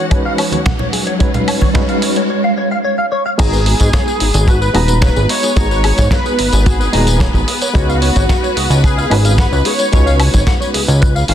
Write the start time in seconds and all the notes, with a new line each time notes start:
Already playing: F#4 F#5, riser
0.10 G#3 C#4 D#4 F#4 B4 C#5, kick, closed hi-hat, high woodblock
0.25 F5
0.38 C#5, open hi-hat, high woodblock
0.52 C#5, closed hi-hat, high conga
0.66 F#5, kick, snare, closed hi-hat, low conga
0.79 C#5, low conga
0.93 G#4, open hi-hat
1.07 C#5, closed hi-hat
1.19 G#3 C#4 D#4 F#4 B4 C#5, kick, closed hi-hat
1.34 F5, closed hi-hat, low conga
1.48 C#5, open hi-hat, high woodblock
1.61 C#5, kick, high bongo, high conga
1.74 G#3 C#4 D#4 F#4 B4 C#5, kick, snare, closed hi-hat
1.89 F5, closed hi-hat
2.02 C#5, open hi-hat
2.16 C#5, closed hi-hat
2.30 C#5
2.44 F5
2.58 C#5
2.71 F5
2.84 C#5
2.98 F5
3.12 C#5
3.26 F5
3.38 G#1 G#3 B3 D#4 F#4 G#4 B4 A#5, kick, closed hi-hat, crash, tambourine
3.53 B4, tambourine
3.66 G#4, open hi-hat
3.80 G#2 G#4, kick, closed hi-hat, tambourine
3.93 C#5, kick, snare, closed hi-hat, tambourine
4.07 G#4, tambourine
4.20 G#1 D#4, open hi-hat
4.34 G#1 G#4, closed hi-hat, tambourine
4.48 F#4 B4, kick, closed hi-hat, tambourine, high woodblock
4.61 B4, tambourine
4.74 D#1 G#3 B3 D#4 F#4 G#4 A#5, open hi-hat, high woodblock
4.88 B4, closed hi-hat, tambourine
5.02 B4 C#5, kick, snare, closed hi-hat, tambourine
5.16 G#1 G#4, tambourine
5.29 D#4 C#5, open hi-hat
5.43 G#4, closed hi-hat, tambourine
5.56 G#1 G#3 B3 D#4 F#4 G#4 C#5 A#5, kick, closed hi-hat, tambourine
5.71 B4, tambourine
5.84 G#4, open hi-hat, high woodblock
5.98 G#2 G#4, kick, snare, closed hi-hat, tambourine
6.11 B4 C#5, kick, snare, closed hi-hat, tambourine
6.26 G#4, tambourine
6.39 G#1 D#4, open hi-hat
6.53 G#1 G#4, closed hi-hat, tambourine
6.66 F#4 G#4, kick, closed hi-hat, tambourine
6.80 B4, tambourine
6.92 D#1 G#3 B3 D#4 F#4 G#4 A#5, open hi-hat
7.07 B4, closed hi-hat, tambourine
7.20 C#5, kick, snare, closed hi-hat, tambourine
7.34 G#1 G#4, kick, tambourine
7.48 G#4, open hi-hat
7.62 C#5, closed hi-hat, tambourine
7.74 C#2 G#3 C#4 D#4 F#4 B4 C#5, kick, closed hi-hat, tambourine
7.89 F5, tambourine
8.02 C#5, open hi-hat
8.16 G#1 C#5, kick, closed hi-hat, tambourine
8.29 F#5, kick, snare, closed hi-hat, tambourine
8.43 C#5, tambourine
8.57 C#2 G#4, open hi-hat
8.70 C#2 C#5, closed hi-hat, tambourine
8.84 G#4 B4, kick, closed hi-hat, tambourine, high woodblock
8.98 F5, tambourine
9.10 G#1 G#3 C#4 D#4 F#4 B4 C#5, open hi-hat, high woodblock
9.25 F5, closed hi-hat, tambourine
9.38 B4 F#5, kick, snare, closed hi-hat, tambourine
9.52 C#2 C#5, tambourine
9.65 G#4 C#5, open hi-hat
9.79 C#5, closed hi-hat, tambourine
9.92 C#2 G#3 C#4 D#4 F#4 B4 C#5, kick, closed hi-hat, tambourine
10.06 F5, tambourine
10.20 C#5, open hi-hat, high woodblock
10.34 G#1 C#5, kick, snare, closed hi-hat, tambourine
10.47 F#5, kick, snare, closed hi-hat, tambourine
10.60 C#5, tambourine
10.74 C#2 G#4, open hi-hat
10.88 C#2 C#5, closed hi-hat, tambourine
11.01 B4, kick, closed hi-hat, tambourine
11.15 F5, tambourine
11.28 G#1 F5, open hi-hat